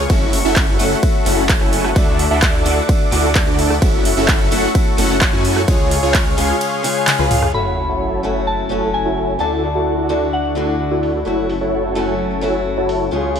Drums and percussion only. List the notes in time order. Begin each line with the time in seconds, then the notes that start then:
0.10 kick, ride
0.33 open hi-hat
0.56 kick, clap, ride
0.80 open hi-hat
1.03 kick, ride
1.26 open hi-hat
1.49 kick, clap, ride
1.73 open hi-hat
1.84 cross-stick
1.96 kick, ride
2.19 open hi-hat
2.42 kick, clap, ride
2.66 open hi-hat
2.89 kick, ride
3.12 open hi-hat
3.35 kick, clap, ride
3.59 open hi-hat
3.70 cross-stick
3.82 kick, ride
4.05 open hi-hat
4.28 kick, clap, ride
4.52 open hi-hat
4.75 kick, ride
4.98 open hi-hat
5.21 kick, clap, ride
5.45 open hi-hat
5.56 cross-stick
5.68 kick, ride
5.91 open hi-hat
6.14 kick, clap, ride
6.38 open hi-hat
6.61 ride
6.84 open hi-hat
7.07 clap, high tom, ride
7.19 high tom
7.31 open hi-hat, mid tom
7.42 cross-stick, mid tom
7.77 open hi-hat
8.24 open hi-hat
8.70 open hi-hat
9.17 open hi-hat
9.63 open hi-hat
10.10 open hi-hat
10.56 open hi-hat
11.03 open hi-hat
11.50 open hi-hat
11.96 open hi-hat
12.43 open hi-hat
12.89 open hi-hat
13.36 open hi-hat